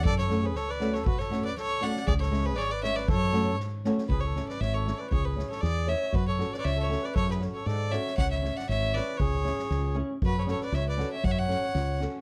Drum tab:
SD |-oo-o-oo|-oo-o-oo|-oo-o-oo|--o-o-oo|
BD |o-------|o-------|o-------|o-------|

SD |--ooo-o-|--ooo---|--ooo-o-|-oo-o-oo|
BD |o-------|o-------|o-------|o-------|

SD |--ooo-o-|--ooo---|--ooo-o-|--o-o-o-|
BD |o-------|o-------|o-------|o-------|